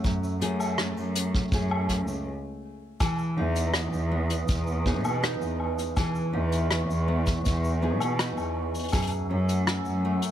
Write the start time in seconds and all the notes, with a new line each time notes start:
Already playing: A3 C#4 G#4 F#5 G#5 E6
0.04 F#2, kick, shaker
0.24 shaker
0.41 F#2 A3 C#4 G#4, closed hi-hat
0.60 low woodblock, shaker
0.78 A3, cross-stick, shaker
0.96 F#2, shaker
1.15 closed hi-hat
1.35 kick
1.52 F#2 A3 C#4 G#4, kick, shaker
1.71 low woodblock
1.89 kick, closed hi-hat
2.08 C#2, shaker
3.00 E3 G#4 B4 G#5 D#6, kick, closed hi-hat, low woodblock, shaker
3.18 shaker
3.37 E2 D#4
3.56 closed hi-hat, shaker
3.74 cross-stick, closed hi-hat, shaker
3.93 E2, shaker
4.12 B3
4.30 closed hi-hat, shaker
4.48 E2, kick, closed hi-hat, shaker
4.67 shaker
4.86 B3 D#4 G#4, kick
5.04 B2, low woodblock, shaker
5.23 D#4, cross-stick, closed hi-hat, shaker
5.41 E2, shaker
5.60 low woodblock
5.79 closed hi-hat, shaker
5.96 E3 G#4 C#6, kick, closed hi-hat, low woodblock, shaker
6.15 shaker
6.33 E2 D#4
6.52 closed hi-hat, shaker
6.71 cross-stick, closed hi-hat, shaker
6.89 E2, shaker
7.08 B3
7.26 kick, closed hi-hat, shaker
7.45 E2, kick, closed hi-hat, shaker
7.64 shaker
7.82 B3 D#4 G#4
8.00 B2, closed hi-hat, low woodblock, shaker
8.19 D#4, cross-stick, closed hi-hat, shaker
8.37 E2, low woodblock, shaker
8.74 closed hi-hat, shaker
8.79 closed hi-hat
8.83 closed hi-hat
8.88 closed hi-hat
8.92 F#2 A3 G#4 F#5 E6, kick, closed hi-hat, low woodblock, shaker
8.97 closed hi-hat
9.02 closed hi-hat
9.07 closed hi-hat, shaker
9.30 F#2 C#4
9.49 closed hi-hat, shaker
9.67 cross-stick, closed hi-hat, shaker
9.85 F#2, shaker
10.05 A3
10.22 closed hi-hat, shaker